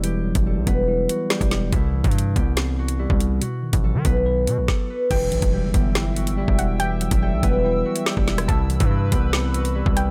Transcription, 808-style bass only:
X:1
M:4/4
L:1/16
Q:1/4=142
K:Em
V:1 name="808-style bass" clef=bass
E,,,3 E,,,2 B,,, E,,,4 z3 E,,,3 | C,,3 G,,3 C,,6- C,, C,,3 | z3 A,,,2 ^D, B,,,4 B,, B,,, z4 | E,,,2 B,,, E,,,2 F,,, G,,,6- G,,, E,,,3- |
E,,,3 E,,,2 B,,, E,,,4 z3 E,,,3 | C,,3 G,,3 C,,6- C,, C,,3 |]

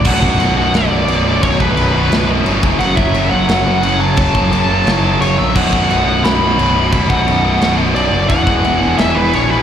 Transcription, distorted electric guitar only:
X:1
M:4/4
L:1/8
Q:1/4=174
K:Bm
V:1 name="Distorted electric guitar" clef=bass
[B,,,F,,B,,] [B,,,F,,B,,] [B,,,F,,B,,] [B,,,F,,B,,] [B,,,F,,B,,] [B,,,F,,B,,] [B,,,F,,B,,] [B,,,F,,B,,] | [B,,,F,,B,,] [B,,,F,,B,,] [B,,,F,,B,,] [B,,,F,,B,,] [B,,,F,,B,,] [B,,,F,,B,,] [B,,,F,,B,,] [F,,C,F,] | [F,,C,F,] [F,,C,F,] [F,,C,F,] [F,,C,F,] [F,,C,F,] [F,,C,F,] [F,,C,F,] [F,,C,F,] | [F,,C,F,] [F,,C,F,] [F,,C,F,] [F,,C,F,] [F,,C,F,] [F,,C,F,] [F,,C,F,] [F,,C,F,] |
[B,,,F,,B,,] [B,,,F,,B,,] [B,,,F,,B,,] [B,,,F,,B,,] [B,,,F,,B,,] [B,,,F,,B,,] [B,,,F,,B,,] [B,,,F,,B,,] | [B,,,F,,B,,] [B,,,F,,B,,] [B,,,F,,B,,] [B,,,F,,B,,] [B,,,F,,B,,] [B,,,F,,B,,] [B,,,F,,B,,] [B,,,F,,B,,] | [E,,B,,E,] [E,,B,,E,] [E,,B,,E,] [E,,B,,E,] [E,,B,,E,] [E,,B,,E,] [E,,B,,E,] [E,,B,,E,] |]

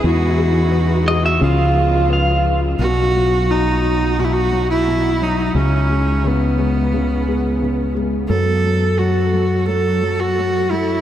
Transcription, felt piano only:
X:1
M:4/4
L:1/8
Q:1/4=87
K:Bmix
V:1 name="Felt piano" clef=bass
E, G B G C, ^E B E | B,, F, B,, F, B,, F, B,, F, | C, G, C, G, C, G, C, G, | F, F, F, F, F, F, F, F, |]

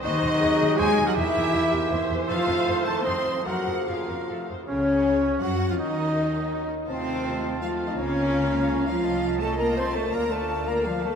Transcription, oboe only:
X:1
M:3/4
L:1/16
Q:1/4=163
K:Bbm
V:1 name="Oboe"
G8 c3 B | =G8- G2 z2 | =A6 c2 e4 | B4 B6 z2 |
D8 G3 F | E8- E2 z2 | =a12 | b12 |
[K:Bb] a12 | f12 |]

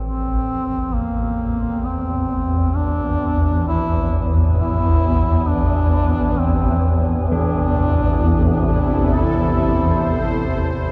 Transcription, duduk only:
X:1
M:4/4
L:1/16
Q:1/4=66
K:Aphr
V:1 name="Duduk"
C4 B,4 C4 D4 | E2 z2 E4 D4 C3 z | D6 D2 E6 z2 |]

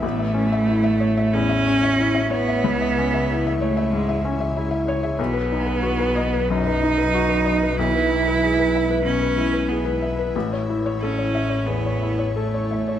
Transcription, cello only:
X:1
M:4/4
L:1/8
Q:1/4=93
K:Alyd
V:1 name="Cello"
A,4 C3 B,- | B,3 A, G, z3 | B,4 D4 | E4 C2 B,2 |
z2 C2 B,2 A,2 |]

